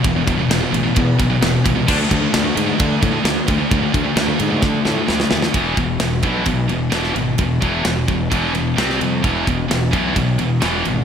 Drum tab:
CC |----------------|x---------------|----------------|----------------|
RD |x-x-x-x-x-x-x-x-|--x-x-x-x-x-x-x-|x-x-x-x---------|x-x-x-x-x-x-x-x-|
SD |----o-------o---|----o-------o---|----o---o-o-oooo|----o-------oo--|
BD |o-o-----o-o---o-|o-o-----o-o---o-|o-o-----o-------|o-o---o-o-------|

CC |----------------|----------------|
RD |x-x-x-x-x-x-x-x-|x-x-x-x-x-x-x-x-|
SD |----o-------oo--|----o-------o---|
BD |o-o---o-o-------|o-o---o-o-------|